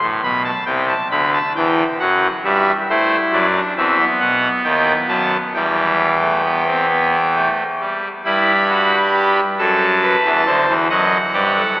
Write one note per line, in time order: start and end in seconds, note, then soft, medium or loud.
0.01 0.20 A1 medium
0.01 0.20 A2 medium
0.23 0.50 B1 medium
0.23 0.50 B2 medium
0.23 0.42 B5 medium
0.44 0.64 A5 medium
0.66 0.94 C2 medium
0.66 0.94 C3 medium
0.66 0.86 G5 medium
0.88 1.08 A5 medium
1.10 1.38 D2 medium
1.10 1.38 D3 medium
1.10 1.30 B5 medium
1.33 1.52 A5 medium
1.56 1.83 E2 medium
1.56 1.83 E3 medium
1.56 1.83 G5 medium
2.00 2.28 F#2 medium
2.00 2.27 F#3 medium
2.00 2.27 F#5 medium
2.44 2.72 G2 medium
2.44 2.71 G3 medium
2.44 2.72 E5 medium
2.89 3.17 A3 medium
2.89 3.46 E4 medium
2.89 3.17 C5 medium
3.32 3.60 F#2 medium
3.32 3.60 F#3 medium
3.32 3.60 D5 medium
3.55 3.74 D4 medium
3.77 4.04 E2 medium
3.77 4.04 E3 medium
3.77 3.96 C4 medium
3.77 4.04 E5 medium
3.99 5.33 B3 medium
4.20 4.48 B1 medium
4.20 4.48 B2 medium
4.20 4.48 F#5 medium
4.64 4.92 D#2 medium
4.64 4.92 D#3 medium
4.64 4.92 G5 medium
5.08 5.37 F#2 medium
5.08 5.37 F#3 medium
5.08 5.37 A5 medium
5.54 7.48 E2 medium
5.54 7.48 E3 medium
5.54 6.12 G3 medium
5.54 7.48 G5 medium
6.21 6.41 A3 soft
6.44 6.64 B3 medium
6.67 6.86 C4 medium
6.89 7.17 B3 medium
7.36 7.63 A3 medium
7.80 8.08 G3 soft
8.24 9.40 G2 medium
8.24 9.40 G3 medium
8.24 8.52 E4 medium
8.24 9.40 B5 medium
8.70 8.97 F#4 medium
9.13 9.41 G4 medium
9.58 10.15 F#2 medium
9.58 10.16 F#3 medium
9.58 9.86 A4 medium
9.58 10.73 A5 medium
10.02 10.30 B4 medium
10.24 10.43 E2 medium
10.24 10.44 E3 medium
10.46 10.66 D2 medium
10.46 10.65 D3 medium
10.46 10.74 C5 medium
10.68 10.87 E2 medium
10.68 10.87 E3 medium
10.89 11.18 F#2 medium
10.89 11.17 F#3 medium
10.89 11.17 D#5 medium
10.89 11.80 F#5 medium
11.33 11.61 G2 medium
11.33 11.61 G3 medium
11.33 11.53 G4 medium
11.57 11.76 A4 medium